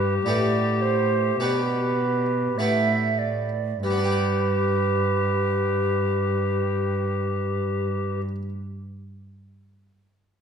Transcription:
Already playing: harpsichord G2, cello G2, recorder G4, flute B4
0.24 harpsichord A2 B3 D4 G4, cello A2, flute D5
0.82 flute C5
1.40 harpsichord B2 B3 D4 G4, cello B2, flute B4
2.58 harpsichord A2 B3 D4 G4, cello A2, flute E5
3.19 flute D5
3.82 cello G2, harpsichord G3, recorder G4, flute B4
3.90 harpsichord B3
3.97 harpsichord D4
4.04 harpsichord G4
4.11 harpsichord D5

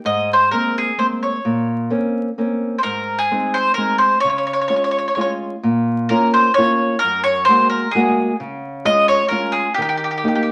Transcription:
0.05 nylon-string guitar G#2, mandolin D#5
0.33 mandolin C5
0.51 nylon-string guitar G#3 A#3 C4, mandolin A#4
0.78 mandolin G#4
0.98 nylon-string guitar G#3 A#3 C4, mandolin C5
1.23 mandolin C#5
1.45 nylon-string guitar A#2
1.90 nylon-string guitar A#3 C4 C#4
2.38 nylon-string guitar A#3 C4 C#4
2.79 mandolin C5
2.83 nylon-string guitar G#2, mandolin A#4
3.19 mandolin G#4
3.31 nylon-string guitar G#3 C4 D#4
3.54 mandolin C5
3.74 nylon-string guitar G#3 C4, mandolin A#4
3.79 nylon-string guitar D#4
3.98 mandolin C5
4.20 nylon-string guitar C#3, mandolin C#5
4.30 mandolin C#5
4.38 mandolin C#5
4.47 mandolin C#5
4.53 mandolin C#5
4.61 mandolin C#5
4.68 nylon-string guitar G#3 C#4 F4, mandolin C#5
4.76 mandolin C#5
4.84 mandolin C#5
4.91 mandolin C#5
4.98 mandolin C#5
5.08 mandolin C#5
5.15 nylon-string guitar G#3 C#4 F4, mandolin C#5
5.21 mandolin C#5
5.63 nylon-string guitar A#2
6.09 nylon-string guitar A#3 C#4 F4, mandolin A#4
6.34 mandolin C5
6.54 nylon-string guitar A#3, mandolin C#5
6.58 nylon-string guitar C#4 F4
6.99 mandolin A#4
7.04 nylon-string guitar F#2
7.24 mandolin C#5
7.45 nylon-string guitar G#3 A#3, mandolin C5
7.49 nylon-string guitar F#4
7.70 mandolin A#4
7.91 nylon-string guitar G#3, mandolin G#4
7.95 nylon-string guitar A#3 F#4
8.40 nylon-string guitar C#3
8.85 nylon-string guitar G#3 C#4 F4, mandolin D#5
9.08 mandolin C#5
9.28 nylon-string guitar G#3 C#4 F4, mandolin A#4
9.52 mandolin G#4
9.74 nylon-string guitar D#3, mandolin G4
9.82 mandolin G4
9.89 mandolin G4
9.97 mandolin G4
10.04 mandolin G4
10.11 mandolin G4
10.18 mandolin G4
10.24 nylon-string guitar A#3 D#4 G4
10.28 mandolin G4
10.35 mandolin G4
10.43 mandolin G4

